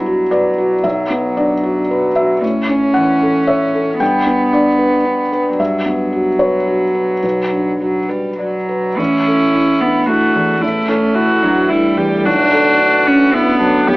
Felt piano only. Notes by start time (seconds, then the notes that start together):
Already playing: G2 B3 E4 B4
0.06 F#4
0.31 B4 D5
0.58 F#4
0.84 B1 E5
1.10 B3
1.37 D4 D5
1.63 F#4
1.91 B4
2.16 F#4 E5
2.42 A2
2.69 C#4
2.94 E3 F#5
3.22 A4
3.47 C#5 E5
3.74 A4
4.00 G2 G5
4.27 B3
4.53 D4 D5
4.79 B4
5.05 D4
5.32 B4
5.59 G2 E5
5.86 B3
6.12 F#4
6.39 B4 C#5
6.67 F#4
6.95 B4
7.23 B1 B4
7.52 D4
7.81 F#4
8.09 B4
8.38 D5
8.69 B4
8.99 A1
9.27 A4
9.54 E4
9.82 D4
10.09 E4
10.36 E2
10.63 A1
10.89 A4
11.15 E4
11.42 D4
11.69 E4
11.98 E2
12.26 B1
12.53 A4
12.80 D4
13.07 C#4
13.34 D4
13.61 F#2
13.88 B1